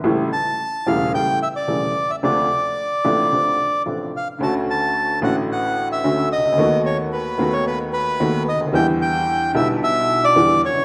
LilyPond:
<<
  \new Staff \with { instrumentName = "Bandoneon" } { \time 4/4 \key d \minor \tempo 4 = 111 r8 a''4 f''8 g''8 e''16 d''4 e''16 | d''2. r8 f''8 | \key d \major a''8 a''4 fis''8 fis''8. e''8. ees''8~ | ees''8 cis''8 b'8. cis''16 b'8 b'4 dis''8 |
g''8 g''4 e''8 e''8. d''8. cis''8 | }
  \new Staff \with { instrumentName = "Upright piano" } { \clef bass \time 4/4 \key d \minor <a,, a, cis g a e'>8 r4 <e,, e, cis g a e'>8 <a,, a, cis g a e'>8 r8 <e,, e, cis g a e'>8 r8 | <d, c d f a d'>8 r4 <a,, a, c f a d'>8 <d, c d f a d'>8 r8 <a,, a, c f a d'>8 r8 | \key d \major <d, d a cis' fis'>4. <a,, a, d a cis' fis'>4. <d, d a cis' fis'>8 r32 c,32 cis,32 d,32 | <dis, dis a b fis'>4. <dis, dis a b fis'>4. <dis, dis a b fis'>8 r32 cis,32 d,32 dis,32 |
<e, d e g b e'>4. <b,, b, d g b e'>4. <e, d e g b e'>8 r32 fis,,32 g,,32 r32 | }
>>